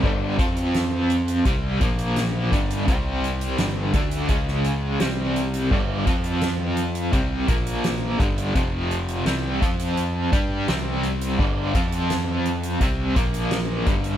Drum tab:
CC |x---------------|----------------|x---------------|----------------|
HH |--xxx-xxx-xxx-xx|x-xxx-xxx-x-x-xx|--xxx-xxx-xxx-xx|x-xxx-xxx-x-x-xx|
SD |----o-------o---|----o----o--o---|----o-------o---|----o-------o---|
BD |o-o-----o-o---o-|o-----o-o-------|o-o-----o-o---o-|o-----o---o-----|

CC |x---------------|
HH |--xxx-xxx-xxx-xx|
SD |----o-------o---|
BD |o-o-----o-o---o-|